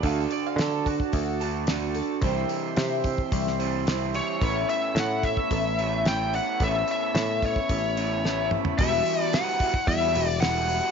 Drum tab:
HH |o-o-o-o-o-o-o-o-|o-o-o-o-o-o-o-o-|o-o-o-o-o-o-o-o-|o-o-o-o-o-o-----|
SD |----o-------o---|----o----o--o---|----o-------o---|----o-------o---|
T2 |----------------|----------------|----------------|--------------o-|
FT |----------------|----------------|----------------|---------------o|
BD |o-----ooo-------|o-----ooo-------|o-----ooo-------|o-----ooo-------|

HH |o-o-o-o-o-o-o-o-|
SD |----o-------o---|
T2 |----------------|
FT |----------------|
BD |o-----ooo-------|